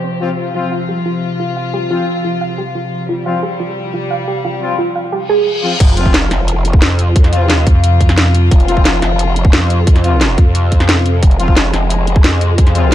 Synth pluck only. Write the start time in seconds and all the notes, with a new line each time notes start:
0.04 C5
0.55 F4
0.72 F5
0.89 G4
1.06 F4
1.40 F4
1.56 F5
1.74 G4
1.90 F4
2.24 F4
2.41 F5
2.58 G4
2.75 F4
3.09 F4
3.26 F5
3.43 G4
3.60 F4
3.94 F4
4.11 F5
4.28 G4
4.45 F4
4.79 F4
4.95 F5
5.12 G4
5.29 G#4